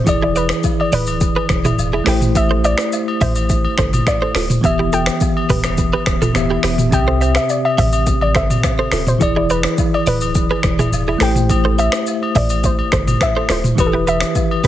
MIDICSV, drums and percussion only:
0, 0, Header, 1, 2, 480
1, 0, Start_track
1, 0, Tempo, 571429
1, 55, Time_signature, 4, 2, 24, 8
1, 12326, End_track
2, 0, Start_track
2, 0, Title_t, "Drums"
2, 57, Note_on_c, 9, 36, 119
2, 57, Note_on_c, 9, 82, 78
2, 63, Note_on_c, 9, 67, 83
2, 141, Note_off_c, 9, 36, 0
2, 141, Note_off_c, 9, 82, 0
2, 147, Note_off_c, 9, 67, 0
2, 300, Note_on_c, 9, 82, 54
2, 302, Note_on_c, 9, 67, 76
2, 384, Note_off_c, 9, 82, 0
2, 386, Note_off_c, 9, 67, 0
2, 412, Note_on_c, 9, 26, 107
2, 418, Note_on_c, 9, 37, 127
2, 426, Note_on_c, 9, 82, 75
2, 496, Note_off_c, 9, 26, 0
2, 502, Note_off_c, 9, 37, 0
2, 510, Note_off_c, 9, 82, 0
2, 533, Note_on_c, 9, 82, 73
2, 537, Note_on_c, 9, 36, 92
2, 544, Note_on_c, 9, 77, 85
2, 617, Note_off_c, 9, 82, 0
2, 621, Note_off_c, 9, 36, 0
2, 628, Note_off_c, 9, 77, 0
2, 671, Note_on_c, 9, 67, 83
2, 755, Note_off_c, 9, 67, 0
2, 775, Note_on_c, 9, 45, 70
2, 777, Note_on_c, 9, 46, 73
2, 777, Note_on_c, 9, 82, 53
2, 859, Note_off_c, 9, 45, 0
2, 861, Note_off_c, 9, 46, 0
2, 861, Note_off_c, 9, 82, 0
2, 895, Note_on_c, 9, 82, 77
2, 904, Note_on_c, 9, 67, 80
2, 979, Note_off_c, 9, 82, 0
2, 988, Note_off_c, 9, 67, 0
2, 1015, Note_on_c, 9, 82, 82
2, 1017, Note_on_c, 9, 36, 103
2, 1099, Note_off_c, 9, 82, 0
2, 1101, Note_off_c, 9, 36, 0
2, 1141, Note_on_c, 9, 67, 78
2, 1225, Note_off_c, 9, 67, 0
2, 1252, Note_on_c, 9, 26, 81
2, 1257, Note_on_c, 9, 36, 101
2, 1258, Note_on_c, 9, 37, 101
2, 1260, Note_on_c, 9, 82, 58
2, 1336, Note_off_c, 9, 26, 0
2, 1341, Note_off_c, 9, 36, 0
2, 1342, Note_off_c, 9, 37, 0
2, 1344, Note_off_c, 9, 82, 0
2, 1382, Note_on_c, 9, 45, 99
2, 1385, Note_on_c, 9, 82, 75
2, 1386, Note_on_c, 9, 67, 74
2, 1466, Note_off_c, 9, 45, 0
2, 1469, Note_off_c, 9, 82, 0
2, 1470, Note_off_c, 9, 67, 0
2, 1501, Note_on_c, 9, 82, 72
2, 1503, Note_on_c, 9, 77, 89
2, 1585, Note_off_c, 9, 82, 0
2, 1587, Note_off_c, 9, 77, 0
2, 1621, Note_on_c, 9, 67, 67
2, 1705, Note_off_c, 9, 67, 0
2, 1730, Note_on_c, 9, 26, 78
2, 1736, Note_on_c, 9, 37, 97
2, 1741, Note_on_c, 9, 46, 75
2, 1741, Note_on_c, 9, 82, 55
2, 1814, Note_off_c, 9, 26, 0
2, 1820, Note_off_c, 9, 37, 0
2, 1825, Note_off_c, 9, 46, 0
2, 1825, Note_off_c, 9, 82, 0
2, 1858, Note_on_c, 9, 45, 97
2, 1862, Note_on_c, 9, 82, 77
2, 1942, Note_off_c, 9, 45, 0
2, 1946, Note_off_c, 9, 82, 0
2, 1977, Note_on_c, 9, 36, 126
2, 1978, Note_on_c, 9, 82, 80
2, 1983, Note_on_c, 9, 67, 85
2, 2061, Note_off_c, 9, 36, 0
2, 2062, Note_off_c, 9, 82, 0
2, 2067, Note_off_c, 9, 67, 0
2, 2220, Note_on_c, 9, 67, 79
2, 2221, Note_on_c, 9, 82, 53
2, 2304, Note_off_c, 9, 67, 0
2, 2305, Note_off_c, 9, 82, 0
2, 2332, Note_on_c, 9, 26, 100
2, 2338, Note_on_c, 9, 37, 124
2, 2346, Note_on_c, 9, 82, 78
2, 2416, Note_off_c, 9, 26, 0
2, 2422, Note_off_c, 9, 37, 0
2, 2430, Note_off_c, 9, 82, 0
2, 2455, Note_on_c, 9, 82, 72
2, 2463, Note_on_c, 9, 77, 86
2, 2539, Note_off_c, 9, 82, 0
2, 2547, Note_off_c, 9, 77, 0
2, 2588, Note_on_c, 9, 67, 82
2, 2672, Note_off_c, 9, 67, 0
2, 2696, Note_on_c, 9, 45, 68
2, 2697, Note_on_c, 9, 36, 94
2, 2699, Note_on_c, 9, 46, 71
2, 2699, Note_on_c, 9, 82, 54
2, 2780, Note_off_c, 9, 45, 0
2, 2781, Note_off_c, 9, 36, 0
2, 2783, Note_off_c, 9, 46, 0
2, 2783, Note_off_c, 9, 82, 0
2, 2817, Note_on_c, 9, 82, 78
2, 2822, Note_on_c, 9, 67, 83
2, 2901, Note_off_c, 9, 82, 0
2, 2906, Note_off_c, 9, 67, 0
2, 2936, Note_on_c, 9, 82, 85
2, 2937, Note_on_c, 9, 36, 99
2, 3020, Note_off_c, 9, 82, 0
2, 3021, Note_off_c, 9, 36, 0
2, 3062, Note_on_c, 9, 67, 77
2, 3146, Note_off_c, 9, 67, 0
2, 3172, Note_on_c, 9, 26, 81
2, 3177, Note_on_c, 9, 36, 105
2, 3178, Note_on_c, 9, 37, 100
2, 3180, Note_on_c, 9, 82, 57
2, 3256, Note_off_c, 9, 26, 0
2, 3261, Note_off_c, 9, 36, 0
2, 3262, Note_off_c, 9, 37, 0
2, 3264, Note_off_c, 9, 82, 0
2, 3302, Note_on_c, 9, 45, 102
2, 3305, Note_on_c, 9, 82, 73
2, 3306, Note_on_c, 9, 67, 75
2, 3386, Note_off_c, 9, 45, 0
2, 3389, Note_off_c, 9, 82, 0
2, 3390, Note_off_c, 9, 67, 0
2, 3416, Note_on_c, 9, 26, 73
2, 3416, Note_on_c, 9, 36, 93
2, 3422, Note_on_c, 9, 37, 89
2, 3422, Note_on_c, 9, 82, 69
2, 3424, Note_on_c, 9, 77, 88
2, 3500, Note_off_c, 9, 26, 0
2, 3500, Note_off_c, 9, 36, 0
2, 3506, Note_off_c, 9, 37, 0
2, 3506, Note_off_c, 9, 82, 0
2, 3508, Note_off_c, 9, 77, 0
2, 3542, Note_on_c, 9, 67, 68
2, 3626, Note_off_c, 9, 67, 0
2, 3651, Note_on_c, 9, 26, 79
2, 3657, Note_on_c, 9, 37, 100
2, 3663, Note_on_c, 9, 46, 75
2, 3663, Note_on_c, 9, 82, 53
2, 3735, Note_off_c, 9, 26, 0
2, 3741, Note_off_c, 9, 37, 0
2, 3747, Note_off_c, 9, 46, 0
2, 3747, Note_off_c, 9, 82, 0
2, 3779, Note_on_c, 9, 45, 97
2, 3783, Note_on_c, 9, 82, 76
2, 3863, Note_off_c, 9, 45, 0
2, 3867, Note_off_c, 9, 82, 0
2, 3896, Note_on_c, 9, 36, 117
2, 3897, Note_on_c, 9, 82, 77
2, 3903, Note_on_c, 9, 67, 81
2, 3980, Note_off_c, 9, 36, 0
2, 3981, Note_off_c, 9, 82, 0
2, 3987, Note_off_c, 9, 67, 0
2, 4139, Note_on_c, 9, 82, 57
2, 4140, Note_on_c, 9, 67, 76
2, 4223, Note_off_c, 9, 82, 0
2, 4224, Note_off_c, 9, 67, 0
2, 4252, Note_on_c, 9, 26, 107
2, 4258, Note_on_c, 9, 37, 122
2, 4267, Note_on_c, 9, 82, 74
2, 4336, Note_off_c, 9, 26, 0
2, 4342, Note_off_c, 9, 37, 0
2, 4351, Note_off_c, 9, 82, 0
2, 4373, Note_on_c, 9, 82, 73
2, 4376, Note_on_c, 9, 36, 93
2, 4383, Note_on_c, 9, 77, 84
2, 4457, Note_off_c, 9, 82, 0
2, 4460, Note_off_c, 9, 36, 0
2, 4467, Note_off_c, 9, 77, 0
2, 4508, Note_on_c, 9, 67, 84
2, 4592, Note_off_c, 9, 67, 0
2, 4615, Note_on_c, 9, 45, 71
2, 4616, Note_on_c, 9, 36, 92
2, 4617, Note_on_c, 9, 46, 71
2, 4617, Note_on_c, 9, 82, 53
2, 4699, Note_off_c, 9, 45, 0
2, 4700, Note_off_c, 9, 36, 0
2, 4701, Note_off_c, 9, 46, 0
2, 4701, Note_off_c, 9, 82, 0
2, 4735, Note_on_c, 9, 26, 78
2, 4736, Note_on_c, 9, 82, 73
2, 4740, Note_on_c, 9, 37, 95
2, 4740, Note_on_c, 9, 67, 81
2, 4819, Note_off_c, 9, 26, 0
2, 4820, Note_off_c, 9, 82, 0
2, 4824, Note_off_c, 9, 37, 0
2, 4824, Note_off_c, 9, 67, 0
2, 4854, Note_on_c, 9, 82, 86
2, 4856, Note_on_c, 9, 36, 96
2, 4938, Note_off_c, 9, 82, 0
2, 4940, Note_off_c, 9, 36, 0
2, 4980, Note_on_c, 9, 67, 78
2, 5064, Note_off_c, 9, 67, 0
2, 5092, Note_on_c, 9, 26, 80
2, 5096, Note_on_c, 9, 36, 103
2, 5098, Note_on_c, 9, 37, 105
2, 5100, Note_on_c, 9, 82, 54
2, 5176, Note_off_c, 9, 26, 0
2, 5180, Note_off_c, 9, 36, 0
2, 5182, Note_off_c, 9, 37, 0
2, 5184, Note_off_c, 9, 82, 0
2, 5221, Note_on_c, 9, 67, 71
2, 5222, Note_on_c, 9, 45, 100
2, 5225, Note_on_c, 9, 82, 72
2, 5305, Note_off_c, 9, 67, 0
2, 5306, Note_off_c, 9, 45, 0
2, 5309, Note_off_c, 9, 82, 0
2, 5333, Note_on_c, 9, 26, 72
2, 5339, Note_on_c, 9, 37, 92
2, 5339, Note_on_c, 9, 82, 70
2, 5341, Note_on_c, 9, 77, 92
2, 5417, Note_off_c, 9, 26, 0
2, 5423, Note_off_c, 9, 37, 0
2, 5423, Note_off_c, 9, 82, 0
2, 5425, Note_off_c, 9, 77, 0
2, 5459, Note_on_c, 9, 67, 70
2, 5543, Note_off_c, 9, 67, 0
2, 5569, Note_on_c, 9, 26, 80
2, 5575, Note_on_c, 9, 37, 100
2, 5581, Note_on_c, 9, 46, 73
2, 5581, Note_on_c, 9, 82, 52
2, 5653, Note_off_c, 9, 26, 0
2, 5659, Note_off_c, 9, 37, 0
2, 5665, Note_off_c, 9, 46, 0
2, 5665, Note_off_c, 9, 82, 0
2, 5697, Note_on_c, 9, 45, 101
2, 5701, Note_on_c, 9, 82, 78
2, 5781, Note_off_c, 9, 45, 0
2, 5785, Note_off_c, 9, 82, 0
2, 5815, Note_on_c, 9, 36, 119
2, 5817, Note_on_c, 9, 82, 77
2, 5821, Note_on_c, 9, 67, 83
2, 5899, Note_off_c, 9, 36, 0
2, 5901, Note_off_c, 9, 82, 0
2, 5905, Note_off_c, 9, 67, 0
2, 6059, Note_on_c, 9, 67, 75
2, 6060, Note_on_c, 9, 82, 55
2, 6143, Note_off_c, 9, 67, 0
2, 6144, Note_off_c, 9, 82, 0
2, 6172, Note_on_c, 9, 26, 110
2, 6178, Note_on_c, 9, 37, 127
2, 6187, Note_on_c, 9, 82, 77
2, 6256, Note_off_c, 9, 26, 0
2, 6262, Note_off_c, 9, 37, 0
2, 6271, Note_off_c, 9, 82, 0
2, 6295, Note_on_c, 9, 82, 71
2, 6300, Note_on_c, 9, 77, 80
2, 6379, Note_off_c, 9, 82, 0
2, 6384, Note_off_c, 9, 77, 0
2, 6427, Note_on_c, 9, 67, 83
2, 6511, Note_off_c, 9, 67, 0
2, 6536, Note_on_c, 9, 36, 94
2, 6536, Note_on_c, 9, 45, 69
2, 6538, Note_on_c, 9, 46, 70
2, 6538, Note_on_c, 9, 82, 53
2, 6620, Note_off_c, 9, 36, 0
2, 6620, Note_off_c, 9, 45, 0
2, 6622, Note_off_c, 9, 46, 0
2, 6622, Note_off_c, 9, 82, 0
2, 6657, Note_on_c, 9, 82, 76
2, 6660, Note_on_c, 9, 67, 83
2, 6741, Note_off_c, 9, 82, 0
2, 6744, Note_off_c, 9, 67, 0
2, 6774, Note_on_c, 9, 82, 80
2, 6776, Note_on_c, 9, 36, 95
2, 6858, Note_off_c, 9, 82, 0
2, 6860, Note_off_c, 9, 36, 0
2, 6899, Note_on_c, 9, 67, 77
2, 6983, Note_off_c, 9, 67, 0
2, 7011, Note_on_c, 9, 26, 79
2, 7016, Note_on_c, 9, 36, 103
2, 7017, Note_on_c, 9, 37, 104
2, 7019, Note_on_c, 9, 82, 54
2, 7095, Note_off_c, 9, 26, 0
2, 7100, Note_off_c, 9, 36, 0
2, 7101, Note_off_c, 9, 37, 0
2, 7103, Note_off_c, 9, 82, 0
2, 7142, Note_on_c, 9, 45, 99
2, 7145, Note_on_c, 9, 67, 75
2, 7145, Note_on_c, 9, 82, 72
2, 7226, Note_off_c, 9, 45, 0
2, 7229, Note_off_c, 9, 67, 0
2, 7229, Note_off_c, 9, 82, 0
2, 7253, Note_on_c, 9, 26, 73
2, 7255, Note_on_c, 9, 36, 96
2, 7259, Note_on_c, 9, 37, 92
2, 7259, Note_on_c, 9, 82, 68
2, 7262, Note_on_c, 9, 77, 91
2, 7337, Note_off_c, 9, 26, 0
2, 7339, Note_off_c, 9, 36, 0
2, 7343, Note_off_c, 9, 37, 0
2, 7343, Note_off_c, 9, 82, 0
2, 7346, Note_off_c, 9, 77, 0
2, 7381, Note_on_c, 9, 67, 67
2, 7465, Note_off_c, 9, 67, 0
2, 7489, Note_on_c, 9, 26, 80
2, 7495, Note_on_c, 9, 37, 99
2, 7500, Note_on_c, 9, 46, 71
2, 7500, Note_on_c, 9, 82, 52
2, 7573, Note_off_c, 9, 26, 0
2, 7579, Note_off_c, 9, 37, 0
2, 7584, Note_off_c, 9, 46, 0
2, 7584, Note_off_c, 9, 82, 0
2, 7616, Note_on_c, 9, 45, 97
2, 7620, Note_on_c, 9, 82, 80
2, 7700, Note_off_c, 9, 45, 0
2, 7704, Note_off_c, 9, 82, 0
2, 7734, Note_on_c, 9, 82, 77
2, 7735, Note_on_c, 9, 36, 119
2, 7746, Note_on_c, 9, 67, 83
2, 7818, Note_off_c, 9, 82, 0
2, 7819, Note_off_c, 9, 36, 0
2, 7830, Note_off_c, 9, 67, 0
2, 7979, Note_on_c, 9, 82, 55
2, 7982, Note_on_c, 9, 67, 76
2, 8063, Note_off_c, 9, 82, 0
2, 8066, Note_off_c, 9, 67, 0
2, 8092, Note_on_c, 9, 26, 108
2, 8098, Note_on_c, 9, 37, 127
2, 8107, Note_on_c, 9, 82, 74
2, 8176, Note_off_c, 9, 26, 0
2, 8182, Note_off_c, 9, 37, 0
2, 8191, Note_off_c, 9, 82, 0
2, 8214, Note_on_c, 9, 82, 72
2, 8216, Note_on_c, 9, 36, 92
2, 8224, Note_on_c, 9, 77, 82
2, 8298, Note_off_c, 9, 82, 0
2, 8300, Note_off_c, 9, 36, 0
2, 8308, Note_off_c, 9, 77, 0
2, 8351, Note_on_c, 9, 67, 84
2, 8435, Note_off_c, 9, 67, 0
2, 8454, Note_on_c, 9, 45, 69
2, 8456, Note_on_c, 9, 46, 73
2, 8456, Note_on_c, 9, 82, 54
2, 8538, Note_off_c, 9, 45, 0
2, 8540, Note_off_c, 9, 46, 0
2, 8540, Note_off_c, 9, 82, 0
2, 8576, Note_on_c, 9, 82, 77
2, 8584, Note_on_c, 9, 67, 83
2, 8660, Note_off_c, 9, 82, 0
2, 8668, Note_off_c, 9, 67, 0
2, 8693, Note_on_c, 9, 82, 86
2, 8696, Note_on_c, 9, 36, 97
2, 8777, Note_off_c, 9, 82, 0
2, 8780, Note_off_c, 9, 36, 0
2, 8824, Note_on_c, 9, 67, 77
2, 8908, Note_off_c, 9, 67, 0
2, 8930, Note_on_c, 9, 26, 83
2, 8936, Note_on_c, 9, 36, 106
2, 8936, Note_on_c, 9, 37, 99
2, 8939, Note_on_c, 9, 82, 54
2, 9014, Note_off_c, 9, 26, 0
2, 9020, Note_off_c, 9, 36, 0
2, 9020, Note_off_c, 9, 37, 0
2, 9023, Note_off_c, 9, 82, 0
2, 9062, Note_on_c, 9, 45, 96
2, 9065, Note_on_c, 9, 82, 72
2, 9068, Note_on_c, 9, 67, 78
2, 9146, Note_off_c, 9, 45, 0
2, 9149, Note_off_c, 9, 82, 0
2, 9152, Note_off_c, 9, 67, 0
2, 9180, Note_on_c, 9, 82, 70
2, 9185, Note_on_c, 9, 77, 87
2, 9264, Note_off_c, 9, 82, 0
2, 9269, Note_off_c, 9, 77, 0
2, 9304, Note_on_c, 9, 67, 68
2, 9388, Note_off_c, 9, 67, 0
2, 9409, Note_on_c, 9, 26, 80
2, 9415, Note_on_c, 9, 37, 100
2, 9421, Note_on_c, 9, 46, 70
2, 9421, Note_on_c, 9, 82, 53
2, 9493, Note_off_c, 9, 26, 0
2, 9499, Note_off_c, 9, 37, 0
2, 9505, Note_off_c, 9, 46, 0
2, 9505, Note_off_c, 9, 82, 0
2, 9538, Note_on_c, 9, 45, 102
2, 9543, Note_on_c, 9, 82, 78
2, 9622, Note_off_c, 9, 45, 0
2, 9627, Note_off_c, 9, 82, 0
2, 9656, Note_on_c, 9, 36, 120
2, 9657, Note_on_c, 9, 82, 76
2, 9666, Note_on_c, 9, 67, 89
2, 9740, Note_off_c, 9, 36, 0
2, 9741, Note_off_c, 9, 82, 0
2, 9750, Note_off_c, 9, 67, 0
2, 9901, Note_on_c, 9, 82, 57
2, 9903, Note_on_c, 9, 67, 80
2, 9985, Note_off_c, 9, 82, 0
2, 9987, Note_off_c, 9, 67, 0
2, 10013, Note_on_c, 9, 26, 104
2, 10019, Note_on_c, 9, 37, 127
2, 10028, Note_on_c, 9, 82, 77
2, 10097, Note_off_c, 9, 26, 0
2, 10103, Note_off_c, 9, 37, 0
2, 10112, Note_off_c, 9, 82, 0
2, 10134, Note_on_c, 9, 82, 73
2, 10145, Note_on_c, 9, 77, 83
2, 10218, Note_off_c, 9, 82, 0
2, 10229, Note_off_c, 9, 77, 0
2, 10270, Note_on_c, 9, 67, 85
2, 10354, Note_off_c, 9, 67, 0
2, 10376, Note_on_c, 9, 45, 73
2, 10377, Note_on_c, 9, 36, 90
2, 10378, Note_on_c, 9, 46, 73
2, 10378, Note_on_c, 9, 82, 52
2, 10460, Note_off_c, 9, 45, 0
2, 10461, Note_off_c, 9, 36, 0
2, 10462, Note_off_c, 9, 46, 0
2, 10462, Note_off_c, 9, 82, 0
2, 10496, Note_on_c, 9, 82, 80
2, 10502, Note_on_c, 9, 67, 81
2, 10580, Note_off_c, 9, 82, 0
2, 10586, Note_off_c, 9, 67, 0
2, 10614, Note_on_c, 9, 82, 83
2, 10616, Note_on_c, 9, 36, 98
2, 10698, Note_off_c, 9, 82, 0
2, 10700, Note_off_c, 9, 36, 0
2, 10741, Note_on_c, 9, 67, 73
2, 10825, Note_off_c, 9, 67, 0
2, 10852, Note_on_c, 9, 26, 78
2, 10857, Note_on_c, 9, 36, 102
2, 10858, Note_on_c, 9, 37, 101
2, 10860, Note_on_c, 9, 82, 55
2, 10936, Note_off_c, 9, 26, 0
2, 10941, Note_off_c, 9, 36, 0
2, 10942, Note_off_c, 9, 37, 0
2, 10944, Note_off_c, 9, 82, 0
2, 10983, Note_on_c, 9, 45, 98
2, 10985, Note_on_c, 9, 67, 76
2, 10986, Note_on_c, 9, 82, 72
2, 11067, Note_off_c, 9, 45, 0
2, 11069, Note_off_c, 9, 67, 0
2, 11070, Note_off_c, 9, 82, 0
2, 11094, Note_on_c, 9, 26, 73
2, 11096, Note_on_c, 9, 36, 94
2, 11100, Note_on_c, 9, 37, 95
2, 11101, Note_on_c, 9, 82, 69
2, 11105, Note_on_c, 9, 77, 90
2, 11178, Note_off_c, 9, 26, 0
2, 11180, Note_off_c, 9, 36, 0
2, 11184, Note_off_c, 9, 37, 0
2, 11185, Note_off_c, 9, 82, 0
2, 11189, Note_off_c, 9, 77, 0
2, 11223, Note_on_c, 9, 67, 66
2, 11307, Note_off_c, 9, 67, 0
2, 11329, Note_on_c, 9, 26, 81
2, 11335, Note_on_c, 9, 37, 100
2, 11341, Note_on_c, 9, 46, 74
2, 11341, Note_on_c, 9, 82, 52
2, 11413, Note_off_c, 9, 26, 0
2, 11419, Note_off_c, 9, 37, 0
2, 11425, Note_off_c, 9, 46, 0
2, 11425, Note_off_c, 9, 82, 0
2, 11458, Note_on_c, 9, 45, 95
2, 11462, Note_on_c, 9, 82, 77
2, 11542, Note_off_c, 9, 45, 0
2, 11546, Note_off_c, 9, 82, 0
2, 11577, Note_on_c, 9, 36, 124
2, 11577, Note_on_c, 9, 82, 79
2, 11583, Note_on_c, 9, 67, 83
2, 11661, Note_off_c, 9, 36, 0
2, 11661, Note_off_c, 9, 82, 0
2, 11667, Note_off_c, 9, 67, 0
2, 11820, Note_on_c, 9, 67, 79
2, 11822, Note_on_c, 9, 82, 59
2, 11904, Note_off_c, 9, 67, 0
2, 11906, Note_off_c, 9, 82, 0
2, 11932, Note_on_c, 9, 26, 106
2, 11938, Note_on_c, 9, 37, 125
2, 11947, Note_on_c, 9, 82, 81
2, 12016, Note_off_c, 9, 26, 0
2, 12022, Note_off_c, 9, 37, 0
2, 12031, Note_off_c, 9, 82, 0
2, 12055, Note_on_c, 9, 82, 74
2, 12057, Note_on_c, 9, 36, 89
2, 12063, Note_on_c, 9, 77, 79
2, 12139, Note_off_c, 9, 82, 0
2, 12141, Note_off_c, 9, 36, 0
2, 12147, Note_off_c, 9, 77, 0
2, 12191, Note_on_c, 9, 67, 86
2, 12275, Note_off_c, 9, 67, 0
2, 12296, Note_on_c, 9, 45, 72
2, 12297, Note_on_c, 9, 36, 96
2, 12299, Note_on_c, 9, 46, 69
2, 12299, Note_on_c, 9, 82, 52
2, 12326, Note_off_c, 9, 36, 0
2, 12326, Note_off_c, 9, 45, 0
2, 12326, Note_off_c, 9, 46, 0
2, 12326, Note_off_c, 9, 82, 0
2, 12326, End_track
0, 0, End_of_file